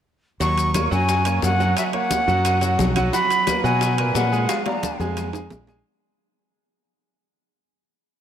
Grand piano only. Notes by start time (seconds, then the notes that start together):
0.40 F#3 F#4 F#5
0.74 A#3 A#4 C#5
0.91 F#3 F#4 F#5
1.26 A#3 A#4 C#5
1.60 F#3 F#4 F#5
1.93 A#3 A#4 C#5
2.27 F#3 F#4 F#5
2.61 F#3 F#4 F#5
2.96 F#3 F#4 F#5
3.13 F#3 F#4 F#5
3.48 A#3 A#4 B4
3.64 F#3 F#4 F#5
3.98 A#2 A#4 B4
4.32 G#3 G#4 G#5
4.66 D4 D5 F5
5.00 G#3 G#4 G#5
5.34 G#3 G#4 G#5
5.68 G#3 G#4 G#5